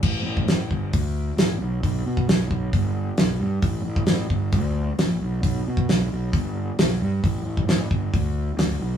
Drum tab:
CC |x---------------|----------------|----------------|----------------|
HH |----o---o---o---|o---o---o---o---|o---o---o---o---|o---o---o---o---|
SD |----o-------o---|----o-------o---|----o-------o---|----o-------o---|
BD |o--o--o-o-------|o--o--o-o-------|o--o--o-o-------|o--o----o-------|

CC |----------------|
HH |o---o---o---o---|
SD |----o-------o---|
BD |o--o--o-o-------|